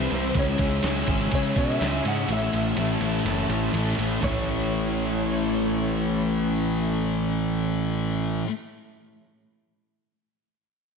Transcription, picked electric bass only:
0.12 0.31 C2 medium
0.35 0.54 C#2 loud
0.60 0.79 C#2 medium
0.84 1.03 C#2 loud
1.08 1.27 G#1 medium
1.32 1.51 C#3 medium
1.57 1.76 B2 medium
1.81 2.00 C#2 loud
2.05 2.24 G#2 loud
2.29 2.48 A1 loud
2.54 2.73 A1 medium
2.77 2.96 A1 loud
3.01 3.20 A1 medium
3.25 3.44 F#1 medium
3.50 3.69 A1 medium
3.74 3.93 A1 loud
3.99 4.18 A1 medium
4.23 8.42 A1 loud

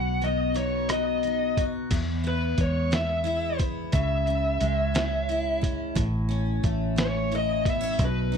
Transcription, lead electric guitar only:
0.00 0.24 F#5 medium
0.24 0.57 D#5 medium
0.57 0.88 C#5 medium
0.90 1.62 D#5 medium
2.28 2.61 B4 medium
2.61 2.91 C#5 medium
2.95 3.57 E5 medium
3.93 5.59 E5 loud
7.01 7.31 C#5 medium
7.36 7.65 D#5 loud
7.70 7.99 E5 loud
8.05 8.38 B4 medium

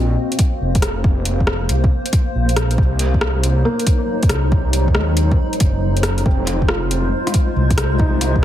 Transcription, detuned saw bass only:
0.00 0.17 A#1 loud
0.61 1.69 F1 medium
1.70 1.90 C2 medium
2.35 2.77 A#1 loud
2.78 3.64 C2 medium
4.30 4.97 C2 medium
4.95 5.16 D#2 medium
5.17 5.38 D#2 medium
5.61 6.25 F#1 medium
6.26 7.12 F1 loud
7.56 8.45 C2 medium

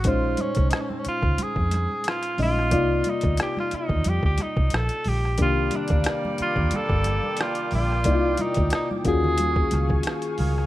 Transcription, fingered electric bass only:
0.06 0.35 A#1 loud
0.57 0.71 C2 medium
1.06 muted fingered electric bass stroke soft
1.23 1.37 C#2 medium
1.39 muted fingered electric bass stroke soft
1.57 1.86 F2 medium
2.39 2.72 A#1 medium
2.72 3.01 C2 loud
3.24 3.37 D2 medium
3.73 muted fingered electric bass stroke soft
3.90 4.03 D#2 medium
4.06 4.21 F2 medium
4.24 4.37 D2 medium
4.57 4.70 C2 medium
4.74 4.88 A#1 medium
5.07 5.39 A#1 medium
5.39 5.68 C2 medium
5.91 6.04 D2 medium
6.40 muted fingered electric bass stroke soft
6.57 6.70 D#2 medium
6.74 muted fingered electric bass stroke soft
6.90 7.19 G1 medium
7.73 8.06 A#1 medium
8.06 8.35 C2 loud
8.58 8.71 D2 loud
9.06 9.64 D#2 loud
9.73 10.02 C#2 medium
10.40 10.66 C#2 medium

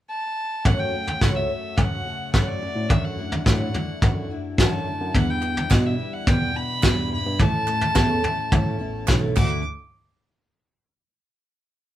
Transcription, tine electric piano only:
0.65 1.11 F#2 medium
1.21 1.44 C#2 medium
1.78 2.01 F#2 medium
2.34 2.68 F#2 medium
2.76 2.87 A2 medium
2.90 3.36 F#2 medium
3.46 3.69 A2 medium
4.02 4.25 F#2 medium
4.58 4.93 F#2 medium
5.00 5.12 F#2 medium
5.15 5.61 E2 medium
5.71 5.94 B2 loud
6.27 6.50 E2 medium
6.83 7.18 E2 medium
7.26 7.37 G2 loud
7.39 7.86 A2 medium
7.96 8.19 E2 medium
8.52 8.75 A2 medium
8.80 9.06 A1 medium
9.08 9.34 B1 medium
9.37 9.63 D2 medium

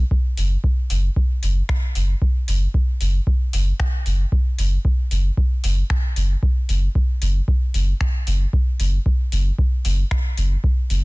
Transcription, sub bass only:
0.37 0.56 F#1 loud
0.90 1.09 F#1 loud
1.43 1.61 F#1 medium
1.95 2.14 F#1 medium
2.48 2.66 F#1 medium
3.01 3.19 F#1 loud
3.53 3.72 F#1 medium
4.06 4.24 F#1 medium
4.59 4.77 F#1 loud
5.11 5.30 F#1 loud
5.64 5.82 F#1 medium
6.16 6.35 F#1 medium
6.69 6.87 F#1 loud
7.22 7.40 F#1 loud
7.74 7.93 F#1 medium
8.27 8.45 F#1 medium
8.80 8.98 F#1 medium
9.32 9.51 F#1 loud
9.85 10.03 F#1 medium
10.37 10.56 F#1 medium
10.90 11.04 F#1 loud

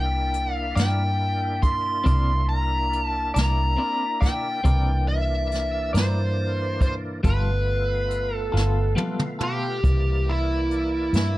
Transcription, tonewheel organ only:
0.00 4.61 A#3 medium
0.00 4.61 D4 medium
0.00 4.62 E4 medium
4.63 7.21 E3 medium
4.63 7.21 A#3 medium
4.63 7.21 D4 medium
7.23 9.81 A3 medium
7.23 9.81 B3 medium
7.23 9.81 F4 medium
9.83 11.38 E3 medium
9.83 11.38 A#3 medium
9.83 11.38 D5 medium

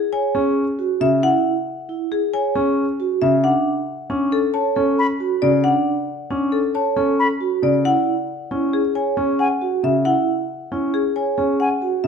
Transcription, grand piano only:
0.35 0.63 C#4 medium
1.01 1.30 C#3 medium
2.55 2.84 C#4 medium
3.22 3.50 C#3 medium
4.10 4.39 C#4 medium
4.76 5.05 C#4 medium
5.42 5.71 C#3 medium
6.30 6.59 C#4 medium
6.96 7.25 C#4 medium
7.62 7.91 C#3 medium
8.51 8.80 C#4 medium
9.17 9.46 C#4 medium
9.83 10.12 C#3 medium
10.72 11.00 C#4 medium
11.38 11.66 C#4 medium
12.04 12.07 C#3 medium

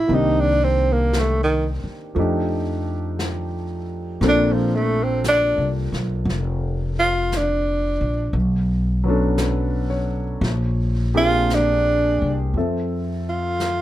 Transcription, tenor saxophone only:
0.00 0.17 E4 medium
0.15 0.42 D#4 medium
0.41 0.65 D4 medium
0.64 0.94 C4 medium
0.93 1.21 A#3 medium
1.20 1.43 A3 medium
1.44 1.66 D#3 medium
4.28 4.54 D4 medium
4.53 4.77 F3 medium
4.76 5.05 A3 medium
5.03 5.22 C4 medium
5.29 5.70 D4 loud
6.99 7.39 F4 medium
7.37 8.38 D4 medium
11.17 11.56 F4 loud
11.55 12.41 D4 loud
13.29 13.82 F4 medium

